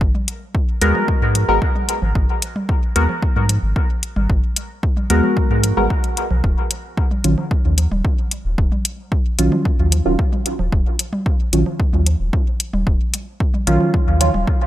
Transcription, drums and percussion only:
0.01 kick loud
0.15 high tom medium
0.28 closed hi-hat medium
0.55 kick loud
0.82 closed hi-hat medium
0.95 high tom medium
0.95 low conga medium
1.08 kick loud
1.35 closed hi-hat medium
1.35 low conga medium
1.62 kick loud
1.75 high tom medium
1.89 closed hi-hat medium
2.02 low conga medium
2.15 kick loud
2.42 closed hi-hat medium
2.56 high tom medium
2.69 kick loud
2.96 closed hi-hat medium
3.09 low conga medium
3.23 kick loud
3.36 high tom medium
3.49 closed hi-hat medium
3.49 low conga medium
3.76 kick loud
4.03 closed hi-hat medium
4.16 high tom medium
4.30 kick loud
4.56 closed hi-hat medium
4.83 kick loud
4.97 high tom medium
5.10 closed hi-hat medium
5.23 low conga medium
5.37 kick loud
5.64 closed hi-hat medium
5.64 low conga medium
5.77 high tom medium
5.90 kick loud
6.04 closed hi-hat soft
6.17 closed hi-hat medium
6.31 low conga medium
6.44 kick loud
6.71 closed hi-hat medium
6.97 kick loud
7.11 high tom medium
7.24 closed hi-hat medium
7.38 low conga medium
7.51 kick loud
7.78 closed hi-hat medium
7.78 low conga medium
7.91 high tom medium
8.05 kick loud
8.31 closed hi-hat medium
8.58 kick loud
8.72 high tom medium
8.85 closed hi-hat medium
9.12 kick loud
9.39 closed hi-hat medium
9.52 high tom medium
9.52 low conga loud
9.65 kick loud
9.92 closed hi-hat medium
9.92 low conga medium
10.19 kick loud
10.32 high tom medium
10.46 closed hi-hat medium
10.59 low conga loud
10.72 kick loud
10.99 closed hi-hat medium
11.13 high tom medium
11.26 kick loud
11.53 closed hi-hat medium
11.66 low conga medium
11.80 kick loud
11.93 high tom medium
12.06 closed hi-hat medium
12.06 low conga medium
12.33 kick loud
12.60 closed hi-hat medium
12.73 high tom medium
12.87 kick loud
13.14 closed hi-hat medium
13.40 kick loud
13.54 high tom medium
13.67 closed hi-hat medium
13.81 low conga medium
13.94 kick loud
14.21 closed hi-hat medium
14.21 low conga medium
14.34 high tom medium
14.47 kick loud

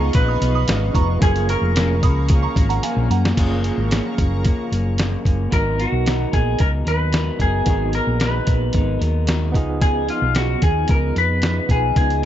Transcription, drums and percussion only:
0.13 kick medium
0.13 closed hi-hat loud
0.42 closed hi-hat medium
0.68 snare loud
0.68 closed hi-hat loud
0.95 kick medium
0.95 closed hi-hat medium
1.22 kick loud
1.22 closed hi-hat loud
1.36 closed hi-hat medium
1.49 closed hi-hat medium
1.76 snare loud
1.76 closed hi-hat loud
2.03 kick loud
2.03 closed hi-hat medium
2.29 kick loud
2.29 closed hi-hat loud
2.56 kick medium
2.56 closed hi-hat medium
2.70 closed hi-hat medium
2.83 closed hi-hat loud
3.11 closed hi-hat medium
3.25 snare medium
3.37 kick loud
3.37 closed hi-hat loud
3.37 crash medium
3.64 closed hi-hat medium
3.91 snare loud
3.91 closed hi-hat loud
4.18 kick medium
4.18 closed hi-hat medium
4.45 kick medium
4.45 closed hi-hat loud
4.73 closed hi-hat medium
4.98 snare loud
4.98 closed hi-hat medium
5.25 kick medium
5.25 closed hi-hat medium
5.52 kick loud
5.52 closed hi-hat medium
5.80 closed hi-hat medium
6.06 snare loud
6.06 closed hi-hat medium
6.33 kick medium
6.33 closed hi-hat medium
6.59 kick medium
6.59 closed hi-hat medium
6.87 closed hi-hat medium
7.13 snare loud
7.13 closed hi-hat medium
7.40 kick medium
7.40 closed hi-hat medium
7.66 kick medium
7.66 closed hi-hat loud
7.93 closed hi-hat medium
8.20 snare loud
8.20 closed hi-hat medium
8.47 kick medium
8.47 closed hi-hat medium
8.73 kick medium
8.73 closed hi-hat medium
9.02 closed hi-hat medium
9.27 snare loud
9.27 closed hi-hat medium
9.54 kick medium
9.54 closed hi-hat medium
9.82 kick loud
9.82 closed hi-hat medium
10.08 closed hi-hat medium
10.35 snare loud
10.35 closed hi-hat medium
10.62 kick medium
10.62 closed hi-hat medium
10.88 kick medium
10.88 closed hi-hat medium
11.16 closed hi-hat medium
11.42 snare loud
11.42 closed hi-hat medium
11.69 kick medium
11.69 closed hi-hat medium
11.96 kick loud
11.96 closed hi-hat loud
12.10 closed hi-hat soft

